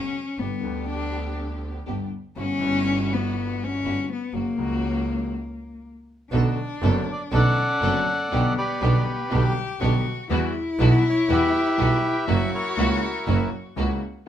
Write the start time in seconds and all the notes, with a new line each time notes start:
Already playing: F#1 F#2 C#3 F#3 B3 C#4 F#4
0.38 G1 G2 D3 G3 B3 D4 G4
0.61 D2 D3 G3 B3 D4 G4
0.66 G4
0.89 D4
1.86 G1 G2 D3 G3 B3 D4 G4
2.36 G1 G2 E3 G3 B3 C#4 E4 F#4
2.59 G1 G2 E3 G3 B3 E4 F#4
2.63 F#4
3.14 B3
3.64 C#4
3.84 G1 G2 E3 G3 B3 E4 F#4
4.12 B3
4.33 F#1 F#2 C#3 F#3 A#3 C#4 F#4
4.58 C#2 C#3 F#3 A#3 C#4 F#4
6.31 B1 B2 D3 A3 B3 D4 F#4 A4
6.82 F#1 F#2 D3 A3 B3 D4 F#4 A4
7.12 D5
7.31 B1 B2 D3 A3 B3 C#4 D4 F#4 A4 D5
7.35 F#5
7.81 F#1 F#2 D3 A3 B3 D4 F#4 A4
8.31 B1 B2 D3 G3 B3 D4 G4
8.57 G4 B4 D5
8.81 B1 B2 D3 G3 B3 D4 G4
9.30 B1 B2 D3 G3 B3 D4 G4
9.80 B1 B2 D3 G3 B3 D4 F#4 G4
10.29 E2 E3 G3 B3 E4 F#4
10.79 B1 B2 E3 G3 B3 E4 F#4
11.09 C#5
11.28 E2 E3 G3 B3 E4 F#4 G4 B4
11.33 E5
11.78 B1 B2 E3 G3 B3 E4 F#4
12.27 F#1 F#2 E3 F#3 A#3 C#4 E4 F#4
12.54 E4 A#4 C#5
12.77 C#2 C#3 E3 A#3 C#4 E4 F#4
13.27 F#1 F#2 E3 F#3 A#3 C#4 E4 F#4
13.76 C#2 C#3 E3 A#3 C#4 E4 F#4